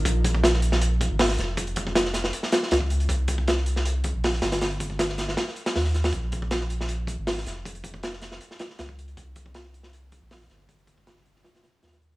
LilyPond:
<<
  \new Staff \with { instrumentName = "Sub bass" } { \clef bass \time 4/4 \key bes \dorian \tempo 4 = 158 bes,,2~ bes,,8. aes,,8. f,,8~ | f,,2 r4 des,4 | c,2~ c,8. bes,,8. g,,8~ | g,,2 r4 ees,4 |
bes,,2~ bes,,8. aes,,8. f,,8~ | f,,2 r4 des,4 | c,2~ c,8. bes,,8. g,,8~ | g,,2 r4 ees,4 | }
  \new DrumStaff \with { instrumentName = "Drums" } \drummode { \time 4/4 <hh bd>8 <hh bd>16 bd16 <hh sn>16 sn16 hh16 sn16 hh8 <hh bd>8 <hho sn>16 sn16 <hh sn>8 | <hh bd>16 hh16 <hh bd>16 bd16 <hh sn>16 sn16 <hh sn>16 sn16 hh16 sn16 <hh sn>16 sn16 <hh sn>16 bd16 hh16 hh16 | <hh bd>8 <hh bd>16 bd16 <hh sn>16 sn16 hh16 sn16 hh8 <hh bd>8 <hho sn>16 sn16 <hh sn>16 <hh sn>16 | <hh sn>16 hh16 <hh bd>16 bd16 <hh sn>16 sn16 <hh sn>16 sn16 <hh sn>16 sn16 hh16 <hh sn>16 <hho sn>16 sn16 <hh sn>16 <hho sn>16 |
<hh bd>8 <hh bd>16 bd16 <hh sn>16 sn16 hh16 sn16 hh8 <hh bd>8 <hho sn>16 sn16 <hh sn>8 | <hh bd>16 hh16 <hh bd>16 bd16 <hh sn>16 sn16 <hh sn>16 sn16 hh16 sn16 <hh sn>16 sn16 <hh sn>16 bd16 hh16 hh16 | <hh bd>8 <hh bd>16 bd16 <hh sn>16 sn16 hh16 sn16 hh8 <hh bd>8 <hho sn>16 sn16 <hh sn>8 | <hh bd>16 hh16 <hh bd>16 bd16 <hh sn>16 sn16 hh16 sn16 <hh sn>16 <hh sn>16 <hh sn>16 sn16 <hh sn>32 <hh sn>32 <hh sn>16 hh16 hh16 | }
>>